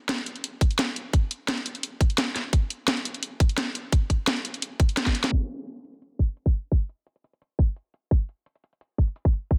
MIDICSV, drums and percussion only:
0, 0, Header, 1, 2, 480
1, 0, Start_track
1, 0, Tempo, 348837
1, 1560, Time_signature, 4, 2, 24, 8
1, 13185, End_track
2, 0, Start_track
2, 0, Title_t, "Drums"
2, 124, Note_on_c, 9, 38, 119
2, 124, Note_on_c, 9, 42, 88
2, 251, Note_off_c, 9, 42, 0
2, 251, Note_on_c, 9, 42, 36
2, 262, Note_off_c, 9, 38, 0
2, 363, Note_off_c, 9, 42, 0
2, 363, Note_on_c, 9, 42, 65
2, 489, Note_off_c, 9, 42, 0
2, 489, Note_on_c, 9, 42, 36
2, 605, Note_off_c, 9, 42, 0
2, 605, Note_on_c, 9, 42, 93
2, 743, Note_off_c, 9, 42, 0
2, 841, Note_on_c, 9, 36, 103
2, 845, Note_on_c, 9, 42, 67
2, 971, Note_off_c, 9, 42, 0
2, 971, Note_on_c, 9, 42, 36
2, 979, Note_off_c, 9, 36, 0
2, 1085, Note_off_c, 9, 42, 0
2, 1085, Note_on_c, 9, 38, 113
2, 1085, Note_on_c, 9, 42, 83
2, 1222, Note_off_c, 9, 38, 0
2, 1222, Note_off_c, 9, 42, 0
2, 1324, Note_on_c, 9, 42, 63
2, 1462, Note_off_c, 9, 42, 0
2, 1561, Note_on_c, 9, 36, 113
2, 1563, Note_on_c, 9, 42, 97
2, 1698, Note_off_c, 9, 36, 0
2, 1701, Note_off_c, 9, 42, 0
2, 1801, Note_on_c, 9, 42, 66
2, 1939, Note_off_c, 9, 42, 0
2, 2042, Note_on_c, 9, 38, 112
2, 2042, Note_on_c, 9, 42, 97
2, 2167, Note_off_c, 9, 42, 0
2, 2167, Note_on_c, 9, 42, 36
2, 2179, Note_off_c, 9, 38, 0
2, 2281, Note_off_c, 9, 42, 0
2, 2281, Note_on_c, 9, 42, 67
2, 2406, Note_off_c, 9, 42, 0
2, 2406, Note_on_c, 9, 42, 37
2, 2522, Note_off_c, 9, 42, 0
2, 2522, Note_on_c, 9, 42, 99
2, 2659, Note_off_c, 9, 42, 0
2, 2760, Note_on_c, 9, 36, 97
2, 2762, Note_on_c, 9, 42, 67
2, 2888, Note_off_c, 9, 42, 0
2, 2888, Note_on_c, 9, 42, 35
2, 2898, Note_off_c, 9, 36, 0
2, 3001, Note_off_c, 9, 42, 0
2, 3001, Note_on_c, 9, 38, 112
2, 3001, Note_on_c, 9, 42, 93
2, 3139, Note_off_c, 9, 38, 0
2, 3139, Note_off_c, 9, 42, 0
2, 3242, Note_on_c, 9, 38, 34
2, 3242, Note_on_c, 9, 42, 65
2, 3380, Note_off_c, 9, 38, 0
2, 3380, Note_off_c, 9, 42, 0
2, 3480, Note_on_c, 9, 36, 111
2, 3481, Note_on_c, 9, 42, 95
2, 3618, Note_off_c, 9, 36, 0
2, 3618, Note_off_c, 9, 42, 0
2, 3720, Note_on_c, 9, 42, 66
2, 3858, Note_off_c, 9, 42, 0
2, 3960, Note_on_c, 9, 38, 115
2, 3960, Note_on_c, 9, 42, 93
2, 4088, Note_off_c, 9, 42, 0
2, 4088, Note_on_c, 9, 42, 38
2, 4097, Note_off_c, 9, 38, 0
2, 4202, Note_off_c, 9, 42, 0
2, 4202, Note_on_c, 9, 42, 69
2, 4327, Note_off_c, 9, 42, 0
2, 4327, Note_on_c, 9, 42, 39
2, 4440, Note_off_c, 9, 42, 0
2, 4440, Note_on_c, 9, 42, 100
2, 4577, Note_off_c, 9, 42, 0
2, 4680, Note_on_c, 9, 36, 99
2, 4681, Note_on_c, 9, 42, 65
2, 4807, Note_off_c, 9, 42, 0
2, 4807, Note_on_c, 9, 42, 38
2, 4818, Note_off_c, 9, 36, 0
2, 4921, Note_off_c, 9, 42, 0
2, 4921, Note_on_c, 9, 38, 109
2, 4921, Note_on_c, 9, 42, 97
2, 5058, Note_off_c, 9, 38, 0
2, 5058, Note_off_c, 9, 42, 0
2, 5161, Note_on_c, 9, 42, 72
2, 5299, Note_off_c, 9, 42, 0
2, 5400, Note_on_c, 9, 36, 111
2, 5401, Note_on_c, 9, 42, 97
2, 5538, Note_off_c, 9, 36, 0
2, 5539, Note_off_c, 9, 42, 0
2, 5640, Note_on_c, 9, 36, 58
2, 5641, Note_on_c, 9, 42, 66
2, 5778, Note_off_c, 9, 36, 0
2, 5779, Note_off_c, 9, 42, 0
2, 5881, Note_on_c, 9, 38, 122
2, 5881, Note_on_c, 9, 42, 101
2, 6007, Note_off_c, 9, 42, 0
2, 6007, Note_on_c, 9, 42, 39
2, 6019, Note_off_c, 9, 38, 0
2, 6121, Note_off_c, 9, 42, 0
2, 6121, Note_on_c, 9, 42, 69
2, 6248, Note_off_c, 9, 42, 0
2, 6248, Note_on_c, 9, 42, 41
2, 6361, Note_off_c, 9, 42, 0
2, 6361, Note_on_c, 9, 42, 101
2, 6498, Note_off_c, 9, 42, 0
2, 6600, Note_on_c, 9, 36, 103
2, 6602, Note_on_c, 9, 42, 69
2, 6728, Note_off_c, 9, 42, 0
2, 6728, Note_on_c, 9, 42, 37
2, 6738, Note_off_c, 9, 36, 0
2, 6841, Note_off_c, 9, 42, 0
2, 6841, Note_on_c, 9, 38, 108
2, 6841, Note_on_c, 9, 42, 96
2, 6966, Note_on_c, 9, 36, 61
2, 6967, Note_off_c, 9, 38, 0
2, 6967, Note_on_c, 9, 38, 75
2, 6978, Note_off_c, 9, 42, 0
2, 7082, Note_on_c, 9, 42, 70
2, 7103, Note_off_c, 9, 36, 0
2, 7105, Note_off_c, 9, 38, 0
2, 7208, Note_on_c, 9, 38, 97
2, 7220, Note_off_c, 9, 42, 0
2, 7320, Note_on_c, 9, 36, 110
2, 7345, Note_off_c, 9, 38, 0
2, 7458, Note_off_c, 9, 36, 0
2, 7563, Note_on_c, 9, 42, 65
2, 7701, Note_off_c, 9, 42, 0
2, 7805, Note_on_c, 9, 42, 95
2, 7928, Note_off_c, 9, 42, 0
2, 7928, Note_on_c, 9, 42, 35
2, 8044, Note_off_c, 9, 42, 0
2, 8044, Note_on_c, 9, 42, 67
2, 8170, Note_off_c, 9, 42, 0
2, 8170, Note_on_c, 9, 42, 38
2, 8284, Note_off_c, 9, 42, 0
2, 8284, Note_on_c, 9, 42, 96
2, 8421, Note_off_c, 9, 42, 0
2, 8521, Note_on_c, 9, 36, 55
2, 8522, Note_on_c, 9, 42, 64
2, 8649, Note_off_c, 9, 42, 0
2, 8649, Note_on_c, 9, 42, 36
2, 8658, Note_off_c, 9, 36, 0
2, 8763, Note_off_c, 9, 42, 0
2, 8763, Note_on_c, 9, 42, 88
2, 8886, Note_on_c, 9, 36, 100
2, 8901, Note_off_c, 9, 42, 0
2, 9003, Note_on_c, 9, 42, 65
2, 9024, Note_off_c, 9, 36, 0
2, 9141, Note_off_c, 9, 42, 0
2, 9241, Note_on_c, 9, 36, 115
2, 9243, Note_on_c, 9, 42, 91
2, 9378, Note_off_c, 9, 36, 0
2, 9381, Note_off_c, 9, 42, 0
2, 9483, Note_on_c, 9, 42, 63
2, 9621, Note_off_c, 9, 42, 0
2, 9722, Note_on_c, 9, 42, 91
2, 9849, Note_off_c, 9, 42, 0
2, 9849, Note_on_c, 9, 42, 34
2, 9965, Note_off_c, 9, 42, 0
2, 9965, Note_on_c, 9, 42, 63
2, 10091, Note_off_c, 9, 42, 0
2, 10091, Note_on_c, 9, 42, 36
2, 10206, Note_off_c, 9, 42, 0
2, 10206, Note_on_c, 9, 42, 91
2, 10343, Note_off_c, 9, 42, 0
2, 10440, Note_on_c, 9, 36, 104
2, 10445, Note_on_c, 9, 42, 63
2, 10571, Note_off_c, 9, 42, 0
2, 10571, Note_on_c, 9, 42, 34
2, 10578, Note_off_c, 9, 36, 0
2, 10684, Note_off_c, 9, 42, 0
2, 10684, Note_on_c, 9, 42, 88
2, 10821, Note_off_c, 9, 42, 0
2, 10923, Note_on_c, 9, 42, 63
2, 11061, Note_off_c, 9, 42, 0
2, 11161, Note_on_c, 9, 36, 117
2, 11163, Note_on_c, 9, 42, 87
2, 11298, Note_off_c, 9, 36, 0
2, 11301, Note_off_c, 9, 42, 0
2, 11405, Note_on_c, 9, 42, 58
2, 11543, Note_off_c, 9, 42, 0
2, 11644, Note_on_c, 9, 42, 88
2, 11770, Note_off_c, 9, 42, 0
2, 11770, Note_on_c, 9, 42, 35
2, 11884, Note_off_c, 9, 42, 0
2, 11884, Note_on_c, 9, 42, 63
2, 12010, Note_off_c, 9, 42, 0
2, 12010, Note_on_c, 9, 42, 35
2, 12124, Note_off_c, 9, 42, 0
2, 12124, Note_on_c, 9, 42, 88
2, 12261, Note_off_c, 9, 42, 0
2, 12362, Note_on_c, 9, 36, 61
2, 12363, Note_on_c, 9, 42, 62
2, 12489, Note_off_c, 9, 42, 0
2, 12489, Note_on_c, 9, 42, 34
2, 12499, Note_off_c, 9, 36, 0
2, 12602, Note_off_c, 9, 42, 0
2, 12602, Note_on_c, 9, 42, 84
2, 12728, Note_on_c, 9, 36, 111
2, 12740, Note_off_c, 9, 42, 0
2, 12842, Note_on_c, 9, 42, 62
2, 12865, Note_off_c, 9, 36, 0
2, 12980, Note_off_c, 9, 42, 0
2, 13082, Note_on_c, 9, 36, 120
2, 13082, Note_on_c, 9, 42, 84
2, 13185, Note_off_c, 9, 36, 0
2, 13185, Note_off_c, 9, 42, 0
2, 13185, End_track
0, 0, End_of_file